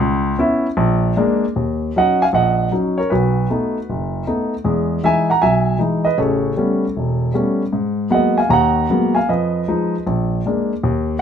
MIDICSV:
0, 0, Header, 1, 2, 480
1, 0, Start_track
1, 0, Key_signature, -6, "minor"
1, 0, Tempo, 386349
1, 17, Time_signature, 4, 2, 24, 8
1, 13932, End_track
2, 0, Start_track
2, 0, Title_t, "Grand piano"
2, 0, Program_c, 0, 0
2, 0, Note_on_c, 0, 37, 70
2, 413, Note_off_c, 0, 37, 0
2, 480, Note_on_c, 0, 59, 54
2, 481, Note_on_c, 0, 61, 53
2, 492, Note_on_c, 0, 64, 64
2, 814, Note_off_c, 0, 59, 0
2, 815, Note_off_c, 0, 61, 0
2, 820, Note_off_c, 0, 64, 0
2, 956, Note_on_c, 0, 34, 72
2, 1384, Note_off_c, 0, 34, 0
2, 1449, Note_on_c, 0, 56, 57
2, 1454, Note_on_c, 0, 58, 49
2, 1454, Note_on_c, 0, 62, 62
2, 1788, Note_off_c, 0, 56, 0
2, 1791, Note_off_c, 0, 58, 0
2, 1791, Note_off_c, 0, 62, 0
2, 1938, Note_on_c, 0, 39, 45
2, 2363, Note_off_c, 0, 39, 0
2, 2436, Note_on_c, 0, 61, 37
2, 2437, Note_on_c, 0, 54, 39
2, 2445, Note_on_c, 0, 63, 41
2, 2459, Note_on_c, 0, 78, 72
2, 2460, Note_on_c, 0, 75, 54
2, 2740, Note_off_c, 0, 75, 0
2, 2759, Note_on_c, 0, 80, 66
2, 2763, Note_on_c, 0, 77, 52
2, 2766, Note_off_c, 0, 61, 0
2, 2767, Note_off_c, 0, 54, 0
2, 2770, Note_off_c, 0, 78, 0
2, 2771, Note_off_c, 0, 63, 0
2, 2821, Note_off_c, 0, 80, 0
2, 2825, Note_off_c, 0, 77, 0
2, 2896, Note_on_c, 0, 34, 51
2, 2914, Note_on_c, 0, 78, 65
2, 2923, Note_on_c, 0, 75, 50
2, 3320, Note_off_c, 0, 34, 0
2, 3361, Note_off_c, 0, 78, 0
2, 3366, Note_off_c, 0, 75, 0
2, 3371, Note_on_c, 0, 54, 40
2, 3377, Note_on_c, 0, 63, 41
2, 3385, Note_on_c, 0, 61, 36
2, 3698, Note_on_c, 0, 73, 61
2, 3712, Note_off_c, 0, 54, 0
2, 3715, Note_off_c, 0, 63, 0
2, 3719, Note_off_c, 0, 61, 0
2, 3719, Note_on_c, 0, 70, 42
2, 3853, Note_on_c, 0, 71, 54
2, 3870, Note_off_c, 0, 70, 0
2, 3871, Note_on_c, 0, 35, 51
2, 3876, Note_off_c, 0, 73, 0
2, 3887, Note_on_c, 0, 66, 40
2, 4288, Note_off_c, 0, 35, 0
2, 4349, Note_on_c, 0, 59, 37
2, 4350, Note_on_c, 0, 57, 41
2, 4364, Note_on_c, 0, 63, 43
2, 4679, Note_off_c, 0, 57, 0
2, 4679, Note_off_c, 0, 59, 0
2, 4686, Note_off_c, 0, 63, 0
2, 4838, Note_on_c, 0, 30, 48
2, 5245, Note_off_c, 0, 30, 0
2, 5245, Note_off_c, 0, 71, 0
2, 5261, Note_off_c, 0, 66, 0
2, 5310, Note_on_c, 0, 63, 44
2, 5311, Note_on_c, 0, 57, 37
2, 5311, Note_on_c, 0, 59, 37
2, 5633, Note_off_c, 0, 57, 0
2, 5633, Note_off_c, 0, 59, 0
2, 5633, Note_off_c, 0, 63, 0
2, 5770, Note_on_c, 0, 56, 51
2, 5774, Note_on_c, 0, 40, 48
2, 6185, Note_off_c, 0, 56, 0
2, 6187, Note_off_c, 0, 40, 0
2, 6253, Note_on_c, 0, 52, 37
2, 6262, Note_on_c, 0, 76, 61
2, 6263, Note_on_c, 0, 56, 36
2, 6267, Note_on_c, 0, 63, 44
2, 6282, Note_on_c, 0, 80, 69
2, 6545, Note_off_c, 0, 76, 0
2, 6578, Note_off_c, 0, 52, 0
2, 6582, Note_on_c, 0, 78, 49
2, 6583, Note_off_c, 0, 56, 0
2, 6585, Note_off_c, 0, 63, 0
2, 6585, Note_off_c, 0, 80, 0
2, 6596, Note_on_c, 0, 82, 70
2, 6728, Note_off_c, 0, 78, 0
2, 6730, Note_on_c, 0, 80, 68
2, 6739, Note_on_c, 0, 76, 59
2, 6744, Note_on_c, 0, 35, 46
2, 6751, Note_off_c, 0, 82, 0
2, 7149, Note_off_c, 0, 35, 0
2, 7172, Note_off_c, 0, 80, 0
2, 7177, Note_off_c, 0, 76, 0
2, 7189, Note_on_c, 0, 52, 40
2, 7198, Note_on_c, 0, 63, 45
2, 7205, Note_on_c, 0, 56, 36
2, 7511, Note_on_c, 0, 75, 59
2, 7523, Note_off_c, 0, 52, 0
2, 7528, Note_off_c, 0, 63, 0
2, 7531, Note_off_c, 0, 56, 0
2, 7531, Note_on_c, 0, 71, 49
2, 7669, Note_off_c, 0, 75, 0
2, 7675, Note_on_c, 0, 49, 52
2, 7676, Note_on_c, 0, 33, 46
2, 7679, Note_off_c, 0, 71, 0
2, 7679, Note_on_c, 0, 73, 50
2, 7692, Note_on_c, 0, 69, 44
2, 8095, Note_off_c, 0, 33, 0
2, 8095, Note_off_c, 0, 49, 0
2, 8165, Note_on_c, 0, 55, 43
2, 8167, Note_on_c, 0, 57, 37
2, 8171, Note_on_c, 0, 59, 36
2, 8179, Note_on_c, 0, 61, 44
2, 8495, Note_off_c, 0, 55, 0
2, 8496, Note_off_c, 0, 57, 0
2, 8498, Note_off_c, 0, 59, 0
2, 8502, Note_off_c, 0, 61, 0
2, 8654, Note_on_c, 0, 28, 49
2, 9071, Note_off_c, 0, 28, 0
2, 9082, Note_off_c, 0, 73, 0
2, 9088, Note_off_c, 0, 69, 0
2, 9118, Note_on_c, 0, 55, 41
2, 9120, Note_on_c, 0, 57, 35
2, 9129, Note_on_c, 0, 59, 36
2, 9132, Note_on_c, 0, 61, 44
2, 9459, Note_off_c, 0, 55, 0
2, 9460, Note_off_c, 0, 57, 0
2, 9464, Note_off_c, 0, 59, 0
2, 9466, Note_off_c, 0, 61, 0
2, 9599, Note_on_c, 0, 44, 52
2, 10030, Note_off_c, 0, 44, 0
2, 10064, Note_on_c, 0, 54, 39
2, 10067, Note_on_c, 0, 58, 36
2, 10070, Note_on_c, 0, 59, 45
2, 10072, Note_on_c, 0, 56, 37
2, 10085, Note_on_c, 0, 78, 63
2, 10117, Note_on_c, 0, 75, 50
2, 10406, Note_on_c, 0, 80, 58
2, 10408, Note_off_c, 0, 75, 0
2, 10420, Note_off_c, 0, 54, 0
2, 10422, Note_off_c, 0, 58, 0
2, 10423, Note_off_c, 0, 59, 0
2, 10424, Note_off_c, 0, 56, 0
2, 10424, Note_off_c, 0, 78, 0
2, 10429, Note_on_c, 0, 77, 47
2, 10549, Note_on_c, 0, 51, 46
2, 10560, Note_on_c, 0, 39, 49
2, 10566, Note_on_c, 0, 82, 75
2, 10585, Note_off_c, 0, 77, 0
2, 10590, Note_off_c, 0, 80, 0
2, 10601, Note_on_c, 0, 78, 62
2, 10987, Note_off_c, 0, 51, 0
2, 10993, Note_off_c, 0, 39, 0
2, 11053, Note_on_c, 0, 56, 37
2, 11055, Note_on_c, 0, 54, 40
2, 11063, Note_on_c, 0, 58, 39
2, 11064, Note_on_c, 0, 59, 47
2, 11341, Note_off_c, 0, 78, 0
2, 11363, Note_on_c, 0, 80, 61
2, 11381, Note_on_c, 0, 77, 52
2, 11393, Note_off_c, 0, 56, 0
2, 11394, Note_off_c, 0, 54, 0
2, 11398, Note_off_c, 0, 58, 0
2, 11398, Note_off_c, 0, 59, 0
2, 11398, Note_off_c, 0, 82, 0
2, 11540, Note_off_c, 0, 77, 0
2, 11540, Note_on_c, 0, 41, 47
2, 11543, Note_on_c, 0, 75, 55
2, 11547, Note_on_c, 0, 71, 42
2, 11548, Note_off_c, 0, 80, 0
2, 11959, Note_off_c, 0, 41, 0
2, 12027, Note_on_c, 0, 56, 36
2, 12030, Note_on_c, 0, 53, 41
2, 12035, Note_on_c, 0, 63, 49
2, 12354, Note_off_c, 0, 56, 0
2, 12356, Note_off_c, 0, 53, 0
2, 12359, Note_off_c, 0, 63, 0
2, 12450, Note_off_c, 0, 75, 0
2, 12453, Note_off_c, 0, 71, 0
2, 12506, Note_on_c, 0, 34, 50
2, 12918, Note_off_c, 0, 34, 0
2, 12994, Note_on_c, 0, 56, 43
2, 13004, Note_on_c, 0, 58, 37
2, 13005, Note_on_c, 0, 62, 46
2, 13314, Note_off_c, 0, 56, 0
2, 13320, Note_off_c, 0, 58, 0
2, 13320, Note_off_c, 0, 62, 0
2, 13461, Note_on_c, 0, 39, 53
2, 13872, Note_off_c, 0, 39, 0
2, 13932, End_track
0, 0, End_of_file